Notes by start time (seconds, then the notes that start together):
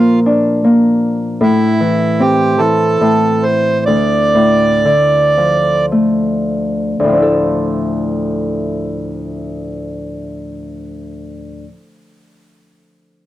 Already playing: A#2 F3 A#3 F4
0.26 D4
0.64 A#3
1.41 A2 E4
1.81 E3
2.20 C4 G4
2.58 E3 A4
3.01 A2
3.43 C5
3.86 D2 D5
4.35 A2
4.85 D3
5.37 F3
5.92 A3
7.00 D2
7.04 A2
7.09 F3
7.13 D4
7.17 E4
7.22 A4